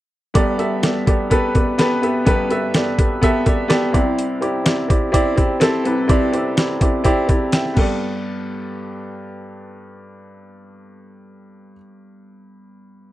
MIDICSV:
0, 0, Header, 1, 3, 480
1, 0, Start_track
1, 0, Key_signature, 1, "major"
1, 0, Tempo, 478469
1, 355, Time_signature, 4, 2, 24, 8
1, 13167, End_track
2, 0, Start_track
2, 0, Title_t, "Upright piano"
2, 0, Program_c, 0, 0
2, 341, Note_on_c, 0, 59, 88
2, 344, Note_on_c, 0, 67, 86
2, 348, Note_on_c, 0, 31, 67
2, 349, Note_on_c, 0, 43, 62
2, 349, Note_on_c, 0, 69, 79
2, 354, Note_on_c, 0, 74, 110
2, 538, Control_c, 0, 64, 127
2, 564, Note_off_c, 0, 59, 0
2, 569, Note_off_c, 0, 67, 0
2, 571, Note_off_c, 0, 69, 0
2, 574, Note_off_c, 0, 74, 0
2, 579, Note_on_c, 0, 59, 75
2, 587, Note_on_c, 0, 67, 59
2, 592, Note_on_c, 0, 69, 64
2, 597, Note_on_c, 0, 76, 78
2, 807, Note_off_c, 0, 59, 0
2, 811, Note_off_c, 0, 67, 0
2, 813, Note_off_c, 0, 69, 0
2, 816, Note_off_c, 0, 76, 0
2, 822, Note_on_c, 0, 59, 59
2, 829, Note_on_c, 0, 67, 54
2, 832, Note_on_c, 0, 69, 59
2, 838, Note_on_c, 0, 74, 70
2, 1049, Note_off_c, 0, 59, 0
2, 1052, Note_off_c, 0, 67, 0
2, 1053, Note_off_c, 0, 69, 0
2, 1057, Note_off_c, 0, 74, 0
2, 1064, Note_on_c, 0, 59, 72
2, 1071, Note_on_c, 0, 67, 62
2, 1076, Note_on_c, 0, 69, 60
2, 1081, Note_on_c, 0, 74, 74
2, 1290, Note_off_c, 0, 59, 0
2, 1293, Note_off_c, 0, 67, 0
2, 1296, Note_off_c, 0, 69, 0
2, 1298, Note_off_c, 0, 74, 0
2, 1307, Note_on_c, 0, 59, 92
2, 1312, Note_on_c, 0, 67, 82
2, 1319, Note_on_c, 0, 69, 90
2, 1322, Note_on_c, 0, 71, 102
2, 1531, Note_off_c, 0, 59, 0
2, 1534, Note_off_c, 0, 67, 0
2, 1537, Note_off_c, 0, 69, 0
2, 1539, Note_off_c, 0, 71, 0
2, 1546, Note_on_c, 0, 59, 67
2, 1553, Note_on_c, 0, 67, 62
2, 1559, Note_on_c, 0, 69, 62
2, 1563, Note_on_c, 0, 74, 73
2, 1771, Note_off_c, 0, 59, 0
2, 1774, Note_off_c, 0, 67, 0
2, 1777, Note_off_c, 0, 69, 0
2, 1779, Note_off_c, 0, 74, 0
2, 1786, Note_on_c, 0, 59, 97
2, 1793, Note_on_c, 0, 67, 84
2, 1797, Note_on_c, 0, 69, 85
2, 1801, Note_on_c, 0, 71, 110
2, 2011, Note_off_c, 0, 59, 0
2, 2014, Note_off_c, 0, 67, 0
2, 2016, Note_off_c, 0, 69, 0
2, 2018, Note_off_c, 0, 71, 0
2, 2026, Note_on_c, 0, 59, 72
2, 2031, Note_on_c, 0, 67, 69
2, 2037, Note_on_c, 0, 69, 66
2, 2042, Note_on_c, 0, 76, 78
2, 2234, Note_off_c, 0, 31, 0
2, 2235, Note_off_c, 0, 43, 0
2, 2245, Note_off_c, 0, 59, 0
2, 2252, Note_off_c, 0, 67, 0
2, 2256, Note_off_c, 0, 69, 0
2, 2259, Note_off_c, 0, 76, 0
2, 2260, Note_on_c, 0, 59, 91
2, 2267, Note_on_c, 0, 67, 80
2, 2269, Note_on_c, 0, 43, 63
2, 2270, Note_on_c, 0, 31, 62
2, 2273, Note_on_c, 0, 69, 83
2, 2277, Note_on_c, 0, 71, 108
2, 2487, Note_off_c, 0, 59, 0
2, 2491, Note_off_c, 0, 67, 0
2, 2495, Note_off_c, 0, 69, 0
2, 2497, Note_off_c, 0, 71, 0
2, 2502, Note_on_c, 0, 59, 74
2, 2508, Note_on_c, 0, 67, 67
2, 2516, Note_on_c, 0, 69, 69
2, 2522, Note_on_c, 0, 76, 87
2, 2729, Note_off_c, 0, 59, 0
2, 2732, Note_off_c, 0, 67, 0
2, 2736, Note_off_c, 0, 69, 0
2, 2739, Note_off_c, 0, 76, 0
2, 2747, Note_on_c, 0, 59, 68
2, 2753, Note_on_c, 0, 67, 62
2, 2758, Note_on_c, 0, 69, 61
2, 2762, Note_on_c, 0, 74, 78
2, 2970, Note_off_c, 0, 59, 0
2, 2973, Note_off_c, 0, 67, 0
2, 2977, Note_off_c, 0, 69, 0
2, 2979, Note_off_c, 0, 74, 0
2, 2985, Note_on_c, 0, 59, 62
2, 2988, Note_on_c, 0, 67, 59
2, 2998, Note_on_c, 0, 69, 60
2, 3005, Note_on_c, 0, 71, 66
2, 3210, Note_off_c, 0, 59, 0
2, 3212, Note_off_c, 0, 67, 0
2, 3217, Note_off_c, 0, 69, 0
2, 3220, Note_off_c, 0, 71, 0
2, 3225, Note_on_c, 0, 59, 96
2, 3233, Note_on_c, 0, 67, 84
2, 3237, Note_on_c, 0, 69, 89
2, 3245, Note_on_c, 0, 76, 105
2, 3448, Note_off_c, 0, 59, 0
2, 3454, Note_off_c, 0, 67, 0
2, 3456, Note_off_c, 0, 69, 0
2, 3461, Note_off_c, 0, 76, 0
2, 3464, Note_on_c, 0, 59, 73
2, 3469, Note_on_c, 0, 67, 68
2, 3471, Note_on_c, 0, 69, 69
2, 3483, Note_on_c, 0, 74, 72
2, 3678, Note_off_c, 0, 59, 0
2, 3684, Note_off_c, 0, 67, 0
2, 3689, Note_off_c, 0, 69, 0
2, 3693, Note_on_c, 0, 59, 96
2, 3694, Note_off_c, 0, 74, 0
2, 3699, Note_on_c, 0, 67, 91
2, 3705, Note_on_c, 0, 69, 84
2, 3709, Note_on_c, 0, 74, 101
2, 3913, Note_off_c, 0, 43, 0
2, 3914, Note_off_c, 0, 31, 0
2, 3924, Note_off_c, 0, 59, 0
2, 3927, Note_off_c, 0, 67, 0
2, 3930, Note_off_c, 0, 69, 0
2, 3932, Note_off_c, 0, 74, 0
2, 3936, Note_on_c, 0, 60, 79
2, 3944, Note_on_c, 0, 64, 73
2, 3945, Note_on_c, 0, 36, 64
2, 3946, Note_on_c, 0, 48, 63
2, 3949, Note_on_c, 0, 67, 77
2, 3954, Note_on_c, 0, 74, 88
2, 3973, Control_c, 0, 64, 0
2, 4139, Control_c, 0, 64, 127
2, 4384, Note_off_c, 0, 60, 0
2, 4388, Note_off_c, 0, 64, 0
2, 4391, Note_off_c, 0, 67, 0
2, 4393, Note_off_c, 0, 74, 0
2, 4423, Note_on_c, 0, 60, 69
2, 4429, Note_on_c, 0, 64, 66
2, 4429, Note_on_c, 0, 67, 72
2, 4436, Note_on_c, 0, 74, 75
2, 4646, Note_off_c, 0, 60, 0
2, 4651, Note_off_c, 0, 64, 0
2, 4652, Note_off_c, 0, 67, 0
2, 4655, Note_off_c, 0, 74, 0
2, 4661, Note_on_c, 0, 60, 67
2, 4666, Note_on_c, 0, 64, 62
2, 4672, Note_on_c, 0, 67, 57
2, 4677, Note_on_c, 0, 74, 75
2, 4886, Note_off_c, 0, 60, 0
2, 4890, Note_off_c, 0, 64, 0
2, 4893, Note_off_c, 0, 67, 0
2, 4895, Note_off_c, 0, 74, 0
2, 4901, Note_on_c, 0, 60, 71
2, 4909, Note_on_c, 0, 64, 56
2, 4915, Note_on_c, 0, 67, 63
2, 4917, Note_on_c, 0, 74, 74
2, 5122, Note_off_c, 0, 60, 0
2, 5125, Note_off_c, 0, 64, 0
2, 5131, Note_off_c, 0, 67, 0
2, 5136, Note_off_c, 0, 74, 0
2, 5137, Note_on_c, 0, 60, 94
2, 5140, Note_on_c, 0, 64, 91
2, 5146, Note_on_c, 0, 67, 87
2, 5154, Note_on_c, 0, 74, 113
2, 5361, Note_off_c, 0, 60, 0
2, 5366, Note_off_c, 0, 64, 0
2, 5370, Note_off_c, 0, 67, 0
2, 5374, Note_off_c, 0, 74, 0
2, 5376, Note_on_c, 0, 60, 71
2, 5381, Note_on_c, 0, 64, 61
2, 5388, Note_on_c, 0, 67, 68
2, 5393, Note_on_c, 0, 74, 81
2, 5604, Note_off_c, 0, 60, 0
2, 5607, Note_off_c, 0, 64, 0
2, 5611, Note_off_c, 0, 67, 0
2, 5613, Note_off_c, 0, 74, 0
2, 5619, Note_on_c, 0, 60, 104
2, 5626, Note_on_c, 0, 64, 87
2, 5631, Note_on_c, 0, 67, 82
2, 5637, Note_on_c, 0, 69, 111
2, 5829, Note_off_c, 0, 36, 0
2, 5829, Note_off_c, 0, 48, 0
2, 5846, Note_off_c, 0, 60, 0
2, 5849, Note_off_c, 0, 64, 0
2, 5852, Note_off_c, 0, 67, 0
2, 5855, Note_off_c, 0, 69, 0
2, 5865, Note_on_c, 0, 60, 78
2, 5872, Note_on_c, 0, 64, 65
2, 5874, Note_on_c, 0, 36, 64
2, 5874, Note_on_c, 0, 48, 67
2, 5877, Note_on_c, 0, 67, 69
2, 5884, Note_on_c, 0, 71, 79
2, 6083, Note_off_c, 0, 60, 0
2, 6089, Note_off_c, 0, 64, 0
2, 6092, Note_off_c, 0, 67, 0
2, 6098, Note_off_c, 0, 71, 0
2, 6098, Note_on_c, 0, 60, 93
2, 6104, Note_on_c, 0, 64, 82
2, 6107, Note_on_c, 0, 67, 85
2, 6116, Note_on_c, 0, 74, 108
2, 6325, Note_off_c, 0, 60, 0
2, 6328, Note_off_c, 0, 64, 0
2, 6330, Note_off_c, 0, 67, 0
2, 6334, Note_off_c, 0, 74, 0
2, 6346, Note_on_c, 0, 60, 74
2, 6353, Note_on_c, 0, 64, 67
2, 6354, Note_on_c, 0, 67, 62
2, 6364, Note_on_c, 0, 74, 79
2, 6569, Note_off_c, 0, 60, 0
2, 6572, Note_off_c, 0, 64, 0
2, 6573, Note_off_c, 0, 67, 0
2, 6578, Note_off_c, 0, 74, 0
2, 6586, Note_on_c, 0, 60, 62
2, 6591, Note_on_c, 0, 64, 59
2, 6596, Note_on_c, 0, 67, 62
2, 6606, Note_on_c, 0, 74, 71
2, 6809, Note_off_c, 0, 60, 0
2, 6811, Note_off_c, 0, 64, 0
2, 6814, Note_off_c, 0, 67, 0
2, 6819, Note_off_c, 0, 74, 0
2, 6829, Note_on_c, 0, 60, 69
2, 6834, Note_on_c, 0, 64, 64
2, 6838, Note_on_c, 0, 67, 60
2, 6845, Note_on_c, 0, 74, 77
2, 7046, Note_off_c, 0, 60, 0
2, 7050, Note_off_c, 0, 64, 0
2, 7055, Note_off_c, 0, 67, 0
2, 7058, Note_off_c, 0, 74, 0
2, 7061, Note_on_c, 0, 60, 95
2, 7065, Note_on_c, 0, 64, 93
2, 7071, Note_on_c, 0, 67, 84
2, 7080, Note_on_c, 0, 74, 104
2, 7286, Note_off_c, 0, 60, 0
2, 7288, Note_off_c, 0, 64, 0
2, 7291, Note_off_c, 0, 67, 0
2, 7295, Note_off_c, 0, 74, 0
2, 7304, Note_on_c, 0, 60, 71
2, 7307, Note_on_c, 0, 64, 64
2, 7316, Note_on_c, 0, 67, 67
2, 7319, Note_on_c, 0, 74, 79
2, 7527, Note_off_c, 0, 60, 0
2, 7529, Note_off_c, 0, 64, 0
2, 7533, Note_off_c, 0, 67, 0
2, 7534, Note_off_c, 0, 74, 0
2, 7558, Note_on_c, 0, 79, 60
2, 7565, Note_on_c, 0, 76, 52
2, 7752, Note_off_c, 0, 36, 0
2, 7752, Note_off_c, 0, 48, 0
2, 7762, Note_on_c, 0, 59, 71
2, 7783, Note_off_c, 0, 79, 0
2, 7785, Note_on_c, 0, 67, 71
2, 7787, Note_off_c, 0, 76, 0
2, 7797, Note_on_c, 0, 43, 72
2, 7804, Control_c, 0, 64, 0
2, 7807, Note_on_c, 0, 69, 64
2, 7830, Note_on_c, 0, 74, 72
2, 7902, Control_c, 0, 64, 127
2, 8045, Control_c, 0, 64, 0
2, 8235, Control_c, 0, 64, 127
2, 11743, Note_off_c, 0, 59, 0
2, 11765, Note_off_c, 0, 67, 0
2, 11777, Note_off_c, 0, 43, 0
2, 11787, Note_off_c, 0, 69, 0
2, 11810, Note_off_c, 0, 74, 0
2, 13167, End_track
3, 0, Start_track
3, 0, Title_t, "Drums"
3, 352, Note_on_c, 9, 42, 71
3, 354, Note_on_c, 9, 36, 95
3, 452, Note_off_c, 9, 42, 0
3, 454, Note_off_c, 9, 36, 0
3, 593, Note_on_c, 9, 42, 52
3, 693, Note_off_c, 9, 42, 0
3, 832, Note_on_c, 9, 42, 75
3, 837, Note_on_c, 9, 38, 88
3, 933, Note_off_c, 9, 42, 0
3, 937, Note_off_c, 9, 38, 0
3, 1077, Note_on_c, 9, 36, 99
3, 1077, Note_on_c, 9, 42, 62
3, 1177, Note_off_c, 9, 36, 0
3, 1177, Note_off_c, 9, 42, 0
3, 1314, Note_on_c, 9, 42, 90
3, 1317, Note_on_c, 9, 36, 70
3, 1415, Note_off_c, 9, 42, 0
3, 1417, Note_off_c, 9, 36, 0
3, 1554, Note_on_c, 9, 42, 55
3, 1558, Note_on_c, 9, 36, 82
3, 1654, Note_off_c, 9, 42, 0
3, 1658, Note_off_c, 9, 36, 0
3, 1792, Note_on_c, 9, 42, 75
3, 1798, Note_on_c, 9, 38, 84
3, 1892, Note_off_c, 9, 42, 0
3, 1898, Note_off_c, 9, 38, 0
3, 2039, Note_on_c, 9, 42, 58
3, 2139, Note_off_c, 9, 42, 0
3, 2272, Note_on_c, 9, 42, 64
3, 2275, Note_on_c, 9, 36, 99
3, 2372, Note_off_c, 9, 42, 0
3, 2375, Note_off_c, 9, 36, 0
3, 2513, Note_on_c, 9, 42, 63
3, 2613, Note_off_c, 9, 42, 0
3, 2749, Note_on_c, 9, 42, 76
3, 2754, Note_on_c, 9, 38, 98
3, 2849, Note_off_c, 9, 42, 0
3, 2854, Note_off_c, 9, 38, 0
3, 2995, Note_on_c, 9, 36, 95
3, 2996, Note_on_c, 9, 42, 63
3, 3095, Note_off_c, 9, 36, 0
3, 3096, Note_off_c, 9, 42, 0
3, 3236, Note_on_c, 9, 36, 73
3, 3237, Note_on_c, 9, 42, 75
3, 3336, Note_off_c, 9, 36, 0
3, 3338, Note_off_c, 9, 42, 0
3, 3472, Note_on_c, 9, 42, 66
3, 3476, Note_on_c, 9, 36, 79
3, 3572, Note_off_c, 9, 42, 0
3, 3576, Note_off_c, 9, 36, 0
3, 3710, Note_on_c, 9, 42, 76
3, 3715, Note_on_c, 9, 38, 89
3, 3810, Note_off_c, 9, 42, 0
3, 3816, Note_off_c, 9, 38, 0
3, 3955, Note_on_c, 9, 36, 85
3, 3957, Note_on_c, 9, 42, 64
3, 4056, Note_off_c, 9, 36, 0
3, 4057, Note_off_c, 9, 42, 0
3, 4199, Note_on_c, 9, 42, 79
3, 4299, Note_off_c, 9, 42, 0
3, 4437, Note_on_c, 9, 42, 55
3, 4538, Note_off_c, 9, 42, 0
3, 4672, Note_on_c, 9, 42, 83
3, 4676, Note_on_c, 9, 38, 100
3, 4772, Note_off_c, 9, 42, 0
3, 4776, Note_off_c, 9, 38, 0
3, 4916, Note_on_c, 9, 36, 100
3, 4918, Note_on_c, 9, 42, 65
3, 5016, Note_off_c, 9, 36, 0
3, 5019, Note_off_c, 9, 42, 0
3, 5156, Note_on_c, 9, 36, 70
3, 5157, Note_on_c, 9, 42, 84
3, 5256, Note_off_c, 9, 36, 0
3, 5257, Note_off_c, 9, 42, 0
3, 5393, Note_on_c, 9, 42, 57
3, 5396, Note_on_c, 9, 36, 79
3, 5493, Note_off_c, 9, 42, 0
3, 5497, Note_off_c, 9, 36, 0
3, 5627, Note_on_c, 9, 42, 81
3, 5633, Note_on_c, 9, 38, 81
3, 5727, Note_off_c, 9, 42, 0
3, 5733, Note_off_c, 9, 38, 0
3, 5873, Note_on_c, 9, 42, 63
3, 5973, Note_off_c, 9, 42, 0
3, 6113, Note_on_c, 9, 42, 75
3, 6114, Note_on_c, 9, 36, 110
3, 6213, Note_off_c, 9, 42, 0
3, 6214, Note_off_c, 9, 36, 0
3, 6355, Note_on_c, 9, 42, 58
3, 6455, Note_off_c, 9, 42, 0
3, 6593, Note_on_c, 9, 42, 80
3, 6597, Note_on_c, 9, 38, 99
3, 6693, Note_off_c, 9, 42, 0
3, 6698, Note_off_c, 9, 38, 0
3, 6832, Note_on_c, 9, 42, 66
3, 6833, Note_on_c, 9, 36, 92
3, 6932, Note_off_c, 9, 42, 0
3, 6933, Note_off_c, 9, 36, 0
3, 7068, Note_on_c, 9, 42, 80
3, 7073, Note_on_c, 9, 36, 68
3, 7168, Note_off_c, 9, 42, 0
3, 7173, Note_off_c, 9, 36, 0
3, 7311, Note_on_c, 9, 42, 62
3, 7315, Note_on_c, 9, 36, 80
3, 7412, Note_off_c, 9, 42, 0
3, 7415, Note_off_c, 9, 36, 0
3, 7548, Note_on_c, 9, 42, 77
3, 7553, Note_on_c, 9, 38, 89
3, 7648, Note_off_c, 9, 42, 0
3, 7654, Note_off_c, 9, 38, 0
3, 7677, Note_on_c, 9, 38, 27
3, 7778, Note_off_c, 9, 38, 0
3, 7791, Note_on_c, 9, 49, 66
3, 7793, Note_on_c, 9, 36, 82
3, 7891, Note_off_c, 9, 49, 0
3, 7893, Note_off_c, 9, 36, 0
3, 13167, End_track
0, 0, End_of_file